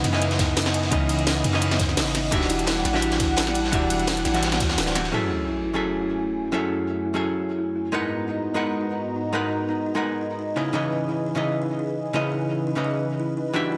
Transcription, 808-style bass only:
0, 0, Header, 1, 2, 480
1, 0, Start_track
1, 0, Tempo, 350877
1, 1254, Time_signature, 4, 2, 24, 8
1, 18843, End_track
2, 0, Start_track
2, 0, Title_t, "808-style bass"
2, 0, Program_c, 0, 38
2, 55, Note_on_c, 0, 42, 97
2, 1237, Note_off_c, 0, 42, 0
2, 1257, Note_on_c, 0, 37, 99
2, 1958, Note_off_c, 0, 37, 0
2, 1976, Note_on_c, 0, 42, 98
2, 2696, Note_on_c, 0, 32, 93
2, 2716, Note_off_c, 0, 42, 0
2, 3157, Note_off_c, 0, 32, 0
2, 3177, Note_on_c, 0, 28, 105
2, 3878, Note_off_c, 0, 28, 0
2, 3895, Note_on_c, 0, 33, 100
2, 5077, Note_off_c, 0, 33, 0
2, 5098, Note_on_c, 0, 28, 103
2, 5798, Note_off_c, 0, 28, 0
2, 5817, Note_on_c, 0, 33, 95
2, 6297, Note_on_c, 0, 40, 90
2, 6318, Note_off_c, 0, 33, 0
2, 6513, Note_off_c, 0, 40, 0
2, 6536, Note_on_c, 0, 26, 93
2, 6997, Note_off_c, 0, 26, 0
2, 18843, End_track
0, 0, End_of_file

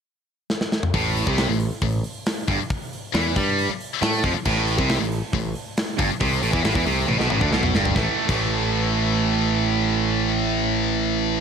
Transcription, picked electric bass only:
0, 0, Header, 1, 3, 480
1, 0, Start_track
1, 0, Key_signature, 0, "minor"
1, 0, Tempo, 438917
1, 1027, Time_signature, 4, 2, 24, 8
1, 12471, End_track
2, 0, Start_track
2, 0, Title_t, "Picked electric bass"
2, 0, Program_c, 0, 34
2, 1025, Note_on_c, 0, 33, 92
2, 1362, Note_off_c, 0, 33, 0
2, 1391, Note_on_c, 0, 36, 93
2, 1613, Note_off_c, 0, 36, 0
2, 1631, Note_on_c, 0, 33, 78
2, 1854, Note_off_c, 0, 33, 0
2, 1989, Note_on_c, 0, 33, 83
2, 2213, Note_off_c, 0, 33, 0
2, 2711, Note_on_c, 0, 31, 91
2, 2824, Note_off_c, 0, 31, 0
2, 3438, Note_on_c, 0, 40, 89
2, 3659, Note_off_c, 0, 40, 0
2, 3675, Note_on_c, 0, 43, 93
2, 4010, Note_off_c, 0, 43, 0
2, 4398, Note_on_c, 0, 45, 95
2, 4619, Note_off_c, 0, 45, 0
2, 4639, Note_on_c, 0, 41, 95
2, 4742, Note_off_c, 0, 41, 0
2, 4876, Note_on_c, 0, 33, 100
2, 5210, Note_off_c, 0, 33, 0
2, 5234, Note_on_c, 0, 36, 94
2, 5457, Note_off_c, 0, 36, 0
2, 5472, Note_on_c, 0, 33, 77
2, 5695, Note_off_c, 0, 33, 0
2, 5829, Note_on_c, 0, 33, 78
2, 6054, Note_off_c, 0, 33, 0
2, 6550, Note_on_c, 0, 31, 94
2, 6662, Note_off_c, 0, 31, 0
2, 6790, Note_on_c, 0, 36, 97
2, 7013, Note_off_c, 0, 36, 0
2, 7025, Note_on_c, 0, 33, 94
2, 7138, Note_off_c, 0, 33, 0
2, 7147, Note_on_c, 0, 40, 89
2, 7254, Note_off_c, 0, 40, 0
2, 7260, Note_on_c, 0, 33, 88
2, 7376, Note_off_c, 0, 33, 0
2, 7381, Note_on_c, 0, 40, 88
2, 7496, Note_off_c, 0, 40, 0
2, 7501, Note_on_c, 0, 36, 95
2, 7727, Note_off_c, 0, 36, 0
2, 7744, Note_on_c, 0, 33, 90
2, 7857, Note_off_c, 0, 33, 0
2, 7866, Note_on_c, 0, 35, 98
2, 7978, Note_off_c, 0, 35, 0
2, 7986, Note_on_c, 0, 33, 92
2, 8098, Note_off_c, 0, 33, 0
2, 8107, Note_on_c, 0, 38, 94
2, 8213, Note_off_c, 0, 38, 0
2, 8220, Note_on_c, 0, 35, 90
2, 8445, Note_off_c, 0, 35, 0
2, 8459, Note_on_c, 0, 31, 89
2, 8685, Note_off_c, 0, 31, 0
2, 8702, Note_on_c, 0, 33, 97
2, 8837, Note_off_c, 0, 33, 0
2, 9064, Note_on_c, 0, 33, 93
2, 12471, Note_off_c, 0, 33, 0
2, 12471, End_track
3, 0, Start_track
3, 0, Title_t, "Muted picked electric bass strokes"
3, 4039, Note_on_c, 9, 29, 43
3, 4148, Note_off_c, 9, 29, 0
3, 4749, Note_on_c, 9, 29, 40
3, 4858, Note_off_c, 9, 29, 0
3, 12471, End_track
0, 0, End_of_file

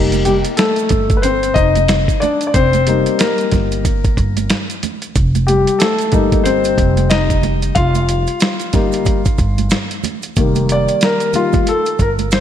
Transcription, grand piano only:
0, 0, Header, 1, 2, 480
1, 0, Start_track
1, 0, Tempo, 652174
1, 1870, Time_signature, 4, 2, 24, 8
1, 9128, End_track
2, 0, Start_track
2, 0, Title_t, "Grand piano"
2, 0, Program_c, 0, 0
2, 0, Note_on_c, 0, 55, 55
2, 0, Note_on_c, 0, 58, 51
2, 0, Note_on_c, 0, 63, 59
2, 185, Note_on_c, 0, 67, 78
2, 188, Note_off_c, 0, 55, 0
2, 199, Note_on_c, 0, 55, 60
2, 240, Note_off_c, 0, 67, 0
2, 252, Note_off_c, 0, 55, 0
2, 418, Note_on_c, 0, 69, 84
2, 433, Note_on_c, 0, 57, 67
2, 841, Note_off_c, 0, 57, 0
2, 860, Note_on_c, 0, 71, 70
2, 876, Note_off_c, 0, 69, 0
2, 899, Note_on_c, 0, 72, 92
2, 906, Note_off_c, 0, 71, 0
2, 917, Note_on_c, 0, 60, 73
2, 1134, Note_on_c, 0, 75, 110
2, 1137, Note_off_c, 0, 60, 0
2, 1144, Note_off_c, 0, 63, 0
2, 1152, Note_off_c, 0, 72, 0
2, 1155, Note_on_c, 0, 63, 74
2, 1603, Note_off_c, 0, 63, 0
2, 1621, Note_on_c, 0, 74, 87
2, 1637, Note_off_c, 0, 75, 0
2, 1637, Note_on_c, 0, 62, 64
2, 1807, Note_off_c, 0, 74, 0
2, 1818, Note_off_c, 0, 62, 0
2, 1818, Note_on_c, 0, 74, 71
2, 1842, Note_off_c, 0, 58, 0
2, 1865, Note_off_c, 0, 74, 0
2, 1869, Note_on_c, 0, 72, 98
2, 1883, Note_on_c, 0, 60, 73
2, 2111, Note_on_c, 0, 55, 55
2, 2117, Note_on_c, 0, 58, 47
2, 2121, Note_on_c, 0, 63, 58
2, 2327, Note_off_c, 0, 60, 0
2, 2348, Note_on_c, 0, 70, 78
2, 2352, Note_off_c, 0, 58, 0
2, 2363, Note_on_c, 0, 58, 60
2, 2364, Note_off_c, 0, 72, 0
2, 2801, Note_off_c, 0, 55, 0
2, 2806, Note_off_c, 0, 63, 0
2, 3280, Note_off_c, 0, 70, 0
2, 3287, Note_off_c, 0, 58, 0
2, 4023, Note_on_c, 0, 67, 77
2, 4039, Note_on_c, 0, 55, 60
2, 4258, Note_off_c, 0, 55, 0
2, 4260, Note_on_c, 0, 69, 83
2, 4274, Note_off_c, 0, 67, 0
2, 4276, Note_on_c, 0, 57, 65
2, 4505, Note_on_c, 0, 55, 55
2, 4512, Note_on_c, 0, 58, 51
2, 4516, Note_on_c, 0, 63, 65
2, 4723, Note_off_c, 0, 57, 0
2, 4737, Note_on_c, 0, 72, 90
2, 4754, Note_on_c, 0, 60, 73
2, 4759, Note_off_c, 0, 69, 0
2, 5194, Note_off_c, 0, 72, 0
2, 5202, Note_off_c, 0, 60, 0
2, 5223, Note_on_c, 0, 75, 95
2, 5229, Note_off_c, 0, 63, 0
2, 5240, Note_on_c, 0, 63, 74
2, 5686, Note_off_c, 0, 63, 0
2, 5703, Note_on_c, 0, 77, 99
2, 5717, Note_on_c, 0, 65, 75
2, 5721, Note_off_c, 0, 75, 0
2, 6398, Note_off_c, 0, 55, 0
2, 6402, Note_off_c, 0, 58, 0
2, 6429, Note_on_c, 0, 55, 55
2, 6434, Note_on_c, 0, 58, 52
2, 6437, Note_on_c, 0, 63, 63
2, 6766, Note_off_c, 0, 55, 0
2, 6769, Note_off_c, 0, 58, 0
2, 6771, Note_off_c, 0, 63, 0
2, 7117, Note_off_c, 0, 77, 0
2, 7124, Note_off_c, 0, 65, 0
2, 7633, Note_on_c, 0, 51, 55
2, 7636, Note_on_c, 0, 55, 49
2, 7639, Note_on_c, 0, 58, 62
2, 7889, Note_on_c, 0, 74, 90
2, 8126, Note_on_c, 0, 70, 85
2, 8127, Note_off_c, 0, 74, 0
2, 8322, Note_off_c, 0, 51, 0
2, 8323, Note_off_c, 0, 55, 0
2, 8325, Note_off_c, 0, 58, 0
2, 8343, Note_on_c, 0, 51, 49
2, 8351, Note_on_c, 0, 55, 42
2, 8352, Note_on_c, 0, 58, 51
2, 8358, Note_on_c, 0, 65, 83
2, 8365, Note_off_c, 0, 70, 0
2, 8562, Note_off_c, 0, 51, 0
2, 8566, Note_off_c, 0, 55, 0
2, 8567, Note_off_c, 0, 58, 0
2, 8601, Note_off_c, 0, 65, 0
2, 8601, Note_on_c, 0, 69, 88
2, 8819, Note_off_c, 0, 69, 0
2, 8844, Note_on_c, 0, 70, 84
2, 8897, Note_off_c, 0, 70, 0
2, 9072, Note_on_c, 0, 72, 84
2, 9128, Note_off_c, 0, 72, 0
2, 9128, End_track
0, 0, End_of_file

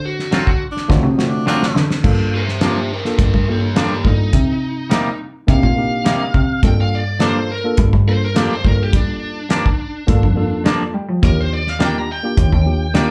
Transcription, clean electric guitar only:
0, 0, Header, 1, 2, 480
1, 0, Start_track
1, 0, Key_signature, -2, "minor"
1, 0, Tempo, 573614
1, 1710, Time_signature, 4, 2, 24, 8
1, 10968, End_track
2, 0, Start_track
2, 0, Title_t, "Clean electric guitar"
2, 0, Program_c, 0, 27
2, 262, Note_on_c, 0, 50, 71
2, 268, Note_on_c, 0, 54, 71
2, 275, Note_on_c, 0, 60, 75
2, 279, Note_on_c, 0, 65, 76
2, 414, Note_off_c, 0, 50, 0
2, 417, Note_off_c, 0, 54, 0
2, 420, Note_off_c, 0, 60, 0
2, 423, Note_off_c, 0, 65, 0
2, 1223, Note_on_c, 0, 50, 76
2, 1230, Note_on_c, 0, 54, 83
2, 1233, Note_on_c, 0, 60, 90
2, 1236, Note_on_c, 0, 65, 92
2, 1375, Note_off_c, 0, 50, 0
2, 1378, Note_off_c, 0, 54, 0
2, 1380, Note_off_c, 0, 60, 0
2, 1381, Note_off_c, 0, 65, 0
2, 2184, Note_on_c, 0, 43, 71
2, 2189, Note_on_c, 0, 53, 83
2, 2195, Note_on_c, 0, 58, 75
2, 2200, Note_on_c, 0, 62, 72
2, 2335, Note_off_c, 0, 43, 0
2, 2338, Note_off_c, 0, 53, 0
2, 2341, Note_off_c, 0, 58, 0
2, 2343, Note_off_c, 0, 62, 0
2, 3138, Note_on_c, 0, 43, 80
2, 3146, Note_on_c, 0, 53, 82
2, 3151, Note_on_c, 0, 58, 81
2, 3156, Note_on_c, 0, 62, 76
2, 3293, Note_off_c, 0, 43, 0
2, 3297, Note_off_c, 0, 53, 0
2, 3299, Note_off_c, 0, 58, 0
2, 3301, Note_off_c, 0, 62, 0
2, 4097, Note_on_c, 0, 48, 78
2, 4103, Note_on_c, 0, 55, 87
2, 4110, Note_on_c, 0, 58, 87
2, 4114, Note_on_c, 0, 63, 92
2, 4252, Note_off_c, 0, 48, 0
2, 4255, Note_off_c, 0, 55, 0
2, 4259, Note_off_c, 0, 58, 0
2, 4261, Note_off_c, 0, 63, 0
2, 5059, Note_on_c, 0, 48, 79
2, 5066, Note_on_c, 0, 55, 74
2, 5070, Note_on_c, 0, 58, 84
2, 5076, Note_on_c, 0, 63, 73
2, 5214, Note_off_c, 0, 48, 0
2, 5217, Note_off_c, 0, 55, 0
2, 5219, Note_off_c, 0, 58, 0
2, 5222, Note_off_c, 0, 63, 0
2, 6020, Note_on_c, 0, 43, 80
2, 6027, Note_on_c, 0, 53, 75
2, 6031, Note_on_c, 0, 58, 80
2, 6035, Note_on_c, 0, 62, 85
2, 6174, Note_off_c, 0, 43, 0
2, 6178, Note_off_c, 0, 53, 0
2, 6180, Note_off_c, 0, 58, 0
2, 6182, Note_off_c, 0, 62, 0
2, 6986, Note_on_c, 0, 43, 73
2, 6993, Note_on_c, 0, 53, 78
2, 6995, Note_on_c, 0, 58, 77
2, 7001, Note_on_c, 0, 62, 86
2, 7137, Note_off_c, 0, 43, 0
2, 7141, Note_off_c, 0, 53, 0
2, 7142, Note_off_c, 0, 58, 0
2, 7145, Note_off_c, 0, 62, 0
2, 7943, Note_on_c, 0, 43, 67
2, 7952, Note_on_c, 0, 53, 71
2, 7956, Note_on_c, 0, 58, 75
2, 7962, Note_on_c, 0, 62, 83
2, 8096, Note_off_c, 0, 43, 0
2, 8101, Note_off_c, 0, 53, 0
2, 8103, Note_off_c, 0, 58, 0
2, 8105, Note_off_c, 0, 62, 0
2, 8906, Note_on_c, 0, 43, 83
2, 8914, Note_on_c, 0, 53, 81
2, 8917, Note_on_c, 0, 58, 84
2, 8922, Note_on_c, 0, 62, 94
2, 9058, Note_off_c, 0, 43, 0
2, 9062, Note_off_c, 0, 53, 0
2, 9063, Note_off_c, 0, 58, 0
2, 9066, Note_off_c, 0, 62, 0
2, 9868, Note_on_c, 0, 51, 71
2, 9872, Note_on_c, 0, 55, 78
2, 9877, Note_on_c, 0, 58, 76
2, 9881, Note_on_c, 0, 62, 76
2, 10019, Note_off_c, 0, 51, 0
2, 10021, Note_off_c, 0, 55, 0
2, 10024, Note_off_c, 0, 58, 0
2, 10026, Note_off_c, 0, 62, 0
2, 10829, Note_on_c, 0, 51, 88
2, 10833, Note_on_c, 0, 55, 81
2, 10841, Note_on_c, 0, 58, 94
2, 10843, Note_on_c, 0, 62, 84
2, 10968, Note_off_c, 0, 51, 0
2, 10968, Note_off_c, 0, 55, 0
2, 10968, Note_off_c, 0, 58, 0
2, 10968, Note_off_c, 0, 62, 0
2, 10968, End_track
0, 0, End_of_file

